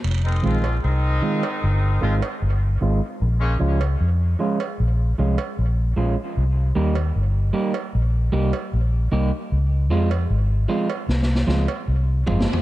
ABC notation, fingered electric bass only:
X:1
M:4/4
L:1/16
Q:1/4=76
K:Fm
V:1 name="Fingered electric bass" clef=bass
F,,,2 B,,,2 C,,2 z2 G,,,2 A,,, z G,,,2 A,,, z | B,,,2 D,,2 F,,2 z2 B,,,2 C,, z B,,,2 B,,, z | C,,2 E,,2 G,,,2 z2 B,,,2 C,, z B,,,2 C,, z | D,,2 F,,2 A,,,2 z2 C,,2 D,, z C,,2 G,,, z |]